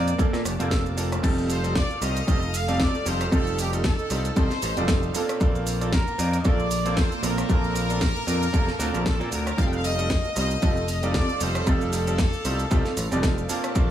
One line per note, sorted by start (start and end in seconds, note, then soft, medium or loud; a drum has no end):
0.00 0.12 F2 medium
0.00 1.19 A#3 medium
0.00 0.10 A#4 medium
0.00 0.67 D5 loud
0.00 1.19 A5 medium
0.00 1.19 D6 loud
0.08 closed hi-hat medium
0.08 shaker soft
0.18 0.30 A#3 medium
0.18 0.39 A#3 medium
0.18 0.30 C4 medium
0.18 0.30 D4 medium
0.18 0.39 D4 medium
0.18 0.30 F4 medium
0.18 0.39 F4 medium
0.18 0.30 A4 loud
0.18 0.40 A4 loud
0.18 kick loud
0.18 closed hi-hat medium
0.18 shaker soft
0.33 0.41 A#2 loud
0.33 snare soft
0.33 closed hi-hat soft
0.33 shaker soft
0.45 0.55 F1 medium
0.45 cross-stick medium
0.45 open hi-hat loud
0.45 shaker medium
0.59 1.18 F1 medium
0.59 0.94 A#3 medium
0.59 0.86 A#3 loud
0.59 0.94 C4 medium
0.59 0.94 D4 medium
0.59 0.86 D4 medium
0.59 0.94 F4 medium
0.59 0.86 F4 medium
0.59 0.86 A4 loud
0.59 0.95 C5 medium
0.59 closed hi-hat medium
0.59 shaker soft
0.71 kick loud
0.71 snare loud
0.71 closed hi-hat medium
0.71 shaker soft
0.86 closed hi-hat soft
0.86 shaker soft
0.97 1.20 A#3 medium
0.97 1.20 C4 medium
0.97 1.21 D4 medium
0.97 1.21 F4 medium
0.97 1.21 A4 medium
0.97 open hi-hat loud
0.97 shaker medium
1.11 muted clean electric guitar stroke medium
1.11 cross-stick medium
1.11 closed hi-hat medium
1.11 shaker soft
1.23 1.83 F1 loud
1.23 1.60 G3 medium
1.23 1.56 C4 loud
1.23 1.60 C4 medium
1.23 1.56 D#4 medium
1.23 1.60 D#4 medium
1.23 1.57 F4 loud
1.23 1.61 F4 medium
1.23 5.11 A4 medium
1.23 1.57 A4 loud
1.23 1.61 A4 loud
1.23 3.30 F5 medium
1.23 5.11 F6 medium
1.23 kick loud
1.23 closed hi-hat medium
1.23 crash medium
1.23 shaker soft
1.38 closed hi-hat soft
1.38 shaker soft
1.50 1.74 C5 loud
1.50 open hi-hat loud
1.50 shaker medium
1.63 1.72 G3 medium
1.63 1.72 C4 medium
1.63 1.73 D#4 medium
1.63 1.73 F4 medium
1.63 1.73 A4 medium
1.63 closed hi-hat medium
1.63 shaker soft
1.75 2.00 D5 loud
1.75 kick loud
1.75 snare loud
1.75 closed hi-hat medium
1.75 shaker soft
1.90 muted clean electric guitar stroke soft
1.90 closed hi-hat soft
1.90 shaker soft
2.01 2.20 C2 medium
2.01 2.18 G3 medium
2.01 2.18 C4 medium
2.01 2.19 D#4 medium
2.01 2.19 F4 medium
2.01 2.19 C5 medium
2.01 2.54 D#5 loud
2.01 open hi-hat loud
2.01 shaker medium
2.17 closed hi-hat medium
2.17 shaker soft
2.27 2.87 F1 medium
2.27 2.38 G3 medium
2.27 2.48 C4 medium
2.27 2.39 C4 medium
2.27 2.48 D#4 medium
2.27 2.39 D#4 medium
2.27 2.48 F4 medium
2.27 2.39 F4 medium
2.27 2.39 A4 loud
2.27 2.48 A4 medium
2.27 kick loud
2.27 closed hi-hat medium
2.27 shaker soft
2.43 closed hi-hat soft
2.43 shaker soft
2.54 2.80 F5 loud
2.54 open hi-hat loud
2.54 shaker medium
2.68 3.03 G3 medium
2.68 2.94 C4 loud
2.68 3.03 C4 medium
2.68 2.94 D#4 medium
2.68 3.03 D#4 medium
2.68 2.94 F4 medium
2.68 3.03 F4 medium
2.68 2.95 A4 loud
2.68 3.03 D5 medium
2.68 closed hi-hat medium
2.68 shaker soft
2.80 3.06 D5 loud
2.80 kick loud
2.80 snare loud
2.80 closed hi-hat medium
2.80 shaker soft
2.95 closed hi-hat soft
2.95 shaker soft
3.05 3.25 F1 medium
3.05 3.29 G3 medium
3.05 3.29 C4 medium
3.05 3.29 D#4 medium
3.05 3.29 F4 medium
3.05 3.29 A4 medium
3.05 3.33 C5 loud
3.05 open hi-hat loud
3.05 shaker medium
3.20 muted clean electric guitar stroke medium
3.20 cross-stick medium
3.20 closed hi-hat medium
3.20 shaker soft
3.31 3.92 F1 loud
3.31 3.69 G3 medium
3.31 3.65 C4 loud
3.31 3.69 C4 medium
3.31 3.69 D#4 medium
3.31 3.65 D#4 loud
3.31 5.13 D#4 medium
3.31 3.65 F4 loud
3.31 3.69 F4 medium
3.31 3.69 A4 loud
3.31 3.66 A4 loud
3.31 3.57 A4 loud
3.31 kick loud
3.31 closed hi-hat medium
3.31 shaker soft
3.47 closed hi-hat soft
3.47 shaker soft
3.59 3.71 G4 medium
3.59 open hi-hat loud
3.59 shaker medium
3.72 3.81 G3 medium
3.72 3.81 C4 medium
3.72 3.81 D#4 medium
3.72 3.81 F4 medium
3.72 3.82 A4 medium
3.72 closed hi-hat medium
3.72 shaker soft
3.84 4.33 A4 loud
3.84 kick loud
3.84 snare loud
3.84 closed hi-hat medium
3.84 shaker soft
3.98 muted clean electric guitar stroke soft
3.98 closed hi-hat soft
3.98 shaker soft
4.10 4.29 C2 medium
4.10 4.27 G3 medium
4.10 4.27 C4 medium
4.10 4.27 D#4 medium
4.10 4.27 F4 medium
4.10 4.27 C5 medium
4.10 open hi-hat loud
4.10 shaker medium
4.25 closed hi-hat medium
4.25 shaker soft
4.36 4.51 C2 medium
4.36 4.47 G3 medium
4.36 4.57 C4 medium
4.36 4.47 C4 medium
4.36 4.57 D#4 medium
4.36 4.47 D#4 medium
4.36 4.48 F4 medium
4.36 4.57 F4 medium
4.36 4.48 A4 loud
4.36 4.57 A4 loud
4.36 5.15 C5 loud
4.36 kick loud
4.36 closed hi-hat medium
4.36 shaker soft
4.51 muted picked electric bass stroke soft
4.51 snare soft
4.51 closed hi-hat soft
4.51 shaker soft
4.62 4.73 A1 loud
4.62 open hi-hat loud
4.62 shaker medium
4.77 5.09 F1 loud
4.77 5.12 G3 medium
4.77 5.03 C4 medium
4.77 5.12 C4 medium
4.77 5.12 D#4 medium
4.77 5.03 D#4 medium
4.77 5.12 F4 medium
4.77 5.03 F4 medium
4.77 5.03 A4 medium
4.77 5.12 D5 medium
4.77 closed hi-hat medium
4.77 shaker soft
4.88 kick loud
4.88 snare loud
4.88 closed hi-hat medium
4.88 shaker soft
5.03 closed hi-hat soft
5.03 shaker soft
5.14 5.37 A#3 medium
5.14 5.88 A#3 loud
5.14 9.54 A#3 medium
5.14 5.38 C4 medium
5.14 5.38 D4 medium
5.14 5.88 D4 medium
5.14 5.38 F4 medium
5.14 5.88 F4 medium
5.14 5.38 A4 medium
5.14 5.89 A4 loud
5.14 9.54 A5 medium
5.14 9.54 D6 medium
5.14 open hi-hat loud
5.14 shaker medium
5.29 cross-stick medium
5.29 closed hi-hat medium
5.29 shaker soft
5.40 6.00 A#1 loud
5.40 5.78 A#3 medium
5.40 5.78 C4 medium
5.40 5.78 D4 medium
5.40 5.78 F4 medium
5.40 5.78 A4 loud
5.40 kick loud
5.40 closed hi-hat medium
5.40 shaker soft
5.55 closed hi-hat soft
5.55 shaker soft
5.67 open hi-hat loud
5.67 shaker medium
5.80 5.90 A#3 medium
5.80 5.90 C4 medium
5.80 5.90 D4 medium
5.80 5.90 F4 medium
5.80 5.90 A4 medium
5.80 closed hi-hat medium
5.80 shaker soft
5.93 6.36 A#4 medium
5.93 kick loud
5.93 snare loud
5.93 closed hi-hat soft
5.93 shaker soft
6.07 muted clean electric guitar stroke soft
6.07 closed hi-hat soft
6.07 shaker soft
6.18 6.38 F2 medium
6.18 6.36 A#3 medium
6.18 6.36 C4 medium
6.18 6.36 D4 medium
6.18 6.36 F4 medium
6.18 6.36 A#4 medium
6.18 open hi-hat loud
6.18 shaker medium
6.33 closed hi-hat medium
6.33 shaker soft
6.39 6.45 D#5 medium
6.44 7.05 A#1 medium
6.44 6.56 A#3 loud
6.44 6.65 A#3 medium
6.44 6.56 C4 medium
6.44 6.56 D4 medium
6.44 6.65 D4 medium
6.44 6.56 F4 medium
6.44 6.65 F4 medium
6.44 6.56 A4 loud
6.44 6.66 A4 medium
6.44 6.97 D5 loud
6.44 kick loud
6.44 closed hi-hat medium
6.44 shaker soft
6.60 closed hi-hat soft
6.60 shaker soft
6.71 open hi-hat loud
6.71 shaker medium
6.85 7.20 A#3 medium
6.85 7.12 A#3 loud
6.85 7.20 C4 medium
6.85 7.21 D4 medium
6.85 7.12 D4 medium
6.85 7.12 F4 medium
6.85 7.21 F4 medium
6.85 7.12 A4 medium
6.85 7.21 C5 medium
6.85 closed hi-hat medium
6.85 shaker soft
6.97 7.24 C5 loud
6.97 kick loud
6.97 snare loud
6.97 closed hi-hat medium
6.97 shaker soft
7.12 closed hi-hat soft
7.12 shaker soft
7.22 7.42 A#1 medium
7.22 7.46 A#3 medium
7.22 7.46 C4 medium
7.22 7.47 D4 medium
7.22 7.47 F4 medium
7.22 7.47 A4 medium
7.22 9.06 A#4 loud
7.22 open hi-hat loud
7.22 shaker medium
7.37 muted clean electric guitar stroke medium
7.37 cross-stick medium
7.37 closed hi-hat medium
7.37 shaker soft
7.49 8.09 A#1 loud
7.49 7.86 A#3 medium
7.49 7.82 A#3 loud
7.49 7.86 C4 medium
7.49 7.86 D4 medium
7.49 7.83 D4 loud
7.49 7.83 F4 loud
7.49 7.87 F4 medium
7.49 7.83 A4 loud
7.49 kick loud
7.49 closed hi-hat medium
7.49 shaker soft
7.64 closed hi-hat soft
7.64 shaker soft
7.76 open hi-hat loud
7.76 shaker medium
7.89 7.98 A#3 medium
7.89 7.99 C4 medium
7.89 7.99 D4 medium
7.89 7.99 F4 medium
7.89 7.99 A4 medium
7.89 closed hi-hat medium
7.89 shaker soft
8.01 kick loud
8.01 snare loud
8.01 closed hi-hat soft
8.01 shaker soft
8.15 muted clean electric guitar stroke soft
8.15 closed hi-hat soft
8.15 shaker soft
8.27 8.46 F2 medium
8.27 8.44 A#3 medium
8.27 8.44 C4 medium
8.27 8.45 D4 medium
8.27 8.45 F4 medium
8.27 8.45 A#4 medium
8.27 open hi-hat loud
8.27 shaker medium
8.43 closed hi-hat soft
8.43 shaker soft
8.53 8.68 F1 medium
8.53 8.64 A#3 medium
8.53 8.74 A#3 medium
8.53 8.64 C4 medium
8.53 8.74 D4 medium
8.53 8.65 D4 medium
8.53 8.65 F4 medium
8.53 8.74 F4 medium
8.53 8.65 A4 loud
8.53 8.74 A4 loud
8.53 kick loud
8.53 closed hi-hat medium
8.53 shaker soft
8.68 muted picked electric bass stroke soft
8.68 snare soft
8.68 closed hi-hat soft
8.68 shaker soft
8.79 8.90 D2 loud
8.79 9.17 A#3 loud
8.79 9.17 C4 medium
8.79 9.17 D4 medium
8.79 9.17 F4 medium
8.79 9.17 A4 loud
8.79 open hi-hat loud
8.79 shaker medium
8.93 9.20 A#1 loud
8.93 9.20 A#3 loud
8.93 9.20 D4 medium
8.93 9.20 F4 medium
8.93 9.21 A4 loud
8.93 closed hi-hat medium
8.93 shaker soft
9.06 9.30 A4 loud
9.06 kick loud
9.06 snare loud
9.06 closed hi-hat soft
9.06 shaker soft
9.20 9.28 A#2 medium
9.20 9.29 A#3 medium
9.20 9.29 C4 medium
9.20 9.29 D4 medium
9.20 9.29 F4 medium
9.20 9.29 A4 medium
9.20 closed hi-hat soft
9.20 shaker soft
9.32 9.51 D2 medium
9.32 9.58 A#4 loud
9.32 open hi-hat loud
9.32 shaker medium
9.46 muted clean electric guitar stroke medium
9.46 cross-stick medium
9.46 closed hi-hat medium
9.46 shaker soft
9.57 10.18 F1 loud
9.57 9.95 G3 medium
9.57 9.91 C4 loud
9.57 9.95 C4 medium
9.57 9.91 D#4 medium
9.57 9.95 D#4 medium
9.57 9.91 F4 loud
9.57 9.95 F4 medium
9.57 13.46 A4 medium
9.57 9.92 A4 loud
9.57 9.96 A4 loud
9.57 13.46 F5 medium
9.57 9.62 F5 loud
9.57 11.65 F6 medium
9.57 kick loud
9.57 closed hi-hat medium
9.57 shaker soft
9.66 9.73 G5 medium
9.73 9.85 F5 loud
9.73 closed hi-hat soft
9.73 shaker soft
9.84 10.33 D#5 loud
9.84 open hi-hat loud
9.84 shaker medium
9.98 10.07 G3 medium
9.98 10.07 C4 medium
9.98 10.07 D#4 medium
9.98 10.07 F4 medium
9.98 10.08 A4 medium
9.98 closed hi-hat soft
9.98 shaker soft
10.10 kick loud
10.10 snare loud
10.10 closed hi-hat soft
10.10 shaker soft
10.24 muted clean electric guitar stroke soft
10.24 closed hi-hat soft
10.24 shaker soft
10.36 10.55 C2 medium
10.36 10.53 G3 medium
10.36 10.53 C4 medium
10.36 10.53 D#4 medium
10.36 10.53 F4 medium
10.36 10.53 C5 medium
10.36 10.85 D#5 loud
10.36 open hi-hat loud
10.36 shaker medium
10.51 closed hi-hat soft
10.51 shaker soft
10.62 11.22 F1 medium
10.62 10.73 G3 medium
10.62 10.83 C4 medium
10.62 10.73 C4 medium
10.62 10.73 D#4 medium
10.62 10.83 D#4 medium
10.62 10.83 F4 medium
10.62 10.74 F4 medium
10.62 10.83 A4 loud
10.62 10.74 A4 loud
10.62 kick loud
10.62 closed hi-hat medium
10.62 shaker soft
10.77 closed hi-hat soft
10.77 shaker soft
10.88 11.13 D#5 loud
10.88 open hi-hat loud
10.88 shaker medium
11.03 11.38 G3 medium
11.03 11.29 C4 medium
11.03 11.38 C4 medium
11.03 11.29 D#4 medium
11.03 11.38 D#4 medium
11.03 11.29 F4 medium
11.03 11.38 F4 medium
11.03 11.30 A4 medium
11.03 11.38 D5 medium
11.03 closed hi-hat medium
11.03 shaker soft
11.14 11.41 D5 loud
11.14 kick loud
11.14 snare loud
11.14 closed hi-hat medium
11.14 shaker soft
11.29 closed hi-hat soft
11.29 shaker soft
11.40 11.60 F1 medium
11.40 11.64 G3 medium
11.40 11.64 C4 medium
11.40 11.64 D#4 medium
11.40 11.64 F4 medium
11.40 11.64 A4 medium
11.40 11.67 C5 medium
11.40 open hi-hat loud
11.40 shaker medium
11.55 muted clean electric guitar stroke medium
11.55 cross-stick medium
11.55 closed hi-hat medium
11.55 shaker soft
11.66 12.26 F1 loud
11.66 12.04 G3 medium
11.66 12.00 C4 loud
11.66 12.04 C4 medium
11.66 12.00 D#4 loud
11.66 12.04 D#4 medium
11.66 12.00 F4 medium
11.66 12.04 F4 medium
11.66 12.01 A4 loud
11.66 12.04 A4 loud
11.66 11.92 A4 loud
11.66 13.48 D6 loud
11.66 kick loud
11.66 closed hi-hat medium
11.66 shaker soft
11.81 closed hi-hat soft
11.81 shaker soft
11.93 13.46 A4 loud
11.93 open hi-hat loud
11.93 shaker medium
12.07 12.16 G3 medium
12.07 12.16 C4 medium
12.07 12.16 D#4 medium
12.07 12.16 F4 medium
12.07 12.17 A4 medium
12.07 closed hi-hat medium
12.07 shaker soft
12.18 kick loud
12.18 snare loud
12.18 closed hi-hat medium
12.18 shaker soft
12.33 muted clean electric guitar stroke soft
12.33 closed hi-hat soft
12.33 shaker soft
12.45 12.64 C2 medium
12.45 12.62 G3 medium
12.45 12.62 C4 medium
12.45 12.62 D#4 medium
12.45 12.62 F4 medium
12.45 12.62 C5 medium
12.45 open hi-hat loud
12.45 shaker medium
12.60 closed hi-hat medium
12.60 shaker soft
12.71 12.85 C2 medium
12.71 12.82 G3 medium
12.71 12.82 C4 medium
12.71 12.91 C4 loud
12.71 12.82 D#4 medium
12.71 12.91 D#4 medium
12.71 12.82 F4 medium
12.71 12.92 F4 medium
12.71 12.82 A4 loud
12.71 12.92 A4 loud
12.71 kick loud
12.71 closed hi-hat medium
12.71 shaker soft
12.85 snare soft
12.85 closed hi-hat soft
12.85 shaker soft
12.97 13.07 A1 loud
12.97 open hi-hat loud
12.97 shaker medium
13.11 13.44 F1 loud
13.11 13.46 G3 medium
13.11 13.46 C4 medium
13.11 13.38 C4 medium
13.11 13.47 D#4 medium
13.11 13.38 D#4 medium
13.11 13.47 F4 medium
13.11 13.38 F4 medium
13.11 13.38 A4 loud
13.11 13.47 D5 medium
13.11 closed hi-hat medium
13.11 shaker soft
13.23 kick loud
13.23 snare loud
13.23 closed hi-hat medium
13.23 shaker soft
13.38 closed hi-hat soft
13.38 shaker soft
13.48 13.72 A#3 medium
13.48 13.91 A#3 loud
13.48 13.91 A#3 medium
13.48 13.72 C4 medium
13.48 13.73 D4 medium
13.48 13.91 D4 medium
13.48 13.73 F4 medium
13.48 13.91 F4 loud
13.48 13.73 A4 medium
13.48 13.91 A4 medium
13.48 13.91 A5 medium
13.48 13.91 D6 medium
13.48 open hi-hat loud
13.48 shaker medium
13.64 cross-stick medium
13.64 closed hi-hat soft
13.64 shaker soft
13.75 13.91 A#1 loud
13.75 13.91 A#3 medium
13.75 13.91 C4 medium
13.75 13.91 D4 medium
13.75 13.91 F4 medium
13.75 13.91 A4 loud
13.75 kick loud
13.75 closed hi-hat medium
13.75 shaker soft